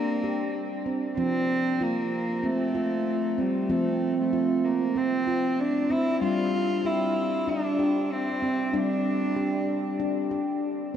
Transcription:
Already playing: G3 A#3 D4
0.24 G4
0.86 C4
1.17 F3 C4
1.81 A#3 F4
2.43 A3 C4
2.75 F4
3.38 G3 C4
3.69 F3 A3 C4
4.21 A3
4.33 F4
4.65 A#3
4.96 C4
5.28 F4
5.60 D4
5.90 C4 E4
6.21 G3 D4 F4
6.85 E4 G4
7.48 D4
7.79 G4
8.12 C4
8.42 C4
8.73 G3 D4
9.36 G4
10.00 D4
10.31 G4

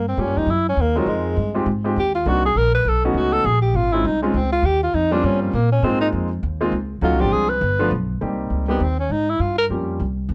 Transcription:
Already playing: G2
0.08 C4
0.17 G#2 G3 A#3 C#4 F4 G4
0.27 G2
0.36 F2 D#4
0.46 F#2 E4
0.69 C#4
0.77 D#2
0.81 A#3
0.96 F#3 G#3 C4 D#4 F4 A#4
1.06 F2 G#3
1.37 G2
1.55 G#3 C4 D#4 F4 G4
1.66 G#2
1.84 G#3 C4 D#4 F4 G4
1.96 D#2 G4
2.15 F4
2.25 C2 A#3 C4 D4 D#4 F#4
2.46 G#4
2.55 A#1 A#4
2.74 B4
2.85 B1 A4
3.04 A3 B3 C#4 D#4 F#4
3.14 C#2 F#4
3.32 A4
3.44 A#1 G#4
3.62 G4
3.74 G#1 F4
3.93 G#3 C4 C#4 D#4 E4 F4
4.04 C2 D#4
4.22 G#3 C4 C#4 D#4 F4
4.34 C#2 C4
4.52 F4
4.63 D#2 G4
4.83 F4
4.94 F2 D#4
5.11 G3 A#3 C4 C#4 D4 F4
5.24 G2 C#4
5.42 F3
5.53 A#2 A#3
5.72 C#4
5.82 G#2 G#3 A#3 C4 D#4 F4
6.01 D#4
6.12 F2
6.43 D#2
6.61 G#3 A#3 C4 D#4 F4
6.72 C#2
7.01 D2 F#3 A3 C#4 D#4 F4 F#4
7.12 C2
7.19 G#1 F3 G#3 C4 D4 F4 G4
7.31 C2 G#4
7.49 B4
7.61 G1
7.79 F3 A3 B3 D4 F4
7.91 B1
8.21 C2 G3 A#3 C4 D#4 G4
8.50 C#2
8.68 G3 A#3 B3 C4 D#4 G4
8.80 D#2 C4
8.99 C#4
9.09 G#2 D#4
9.29 E4
9.39 G2 F4
9.58 A#4
9.69 F2 G3 A#3 C#4 F4 G4
10.00 C2
10.29 E2

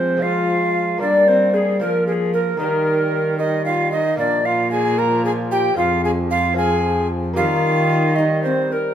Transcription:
Already playing: F3 G#3 C4 F4 C5
0.17 G#3 C4 F4
0.22 G#3 F4 F5
0.98 G3 A#3 D4 D5
1.28 C4 C5
1.54 G#4
1.80 F3 A#3 A#4
2.07 G#4 A#4
2.12 G#4
2.33 A#4
2.57 D#3 G3 A#3 D#4 A#4
3.39 G3 D#4 D#5
3.66 F4 F5
3.92 D#4 D#5
4.16 A#2 F3 A#3 F4 D5
4.20 A#2 D4
4.45 F4 F5
4.71 G#4 G#5
4.98 F3 A#4 A#5
5.25 G#4 G#5
5.51 G4 G5
5.74 F2 F3 G#3 C4 F4
5.78 F2 F5
6.04 G#4 G#5
6.30 F4 F5
6.53 F3 G#3 C4 F4 G#4
6.58 G#5
7.33 D#3 G3 A#3 D#4 F4 G4 F5
8.16 G3 D#4 D#5
8.43 C4 C5
8.71 A#4

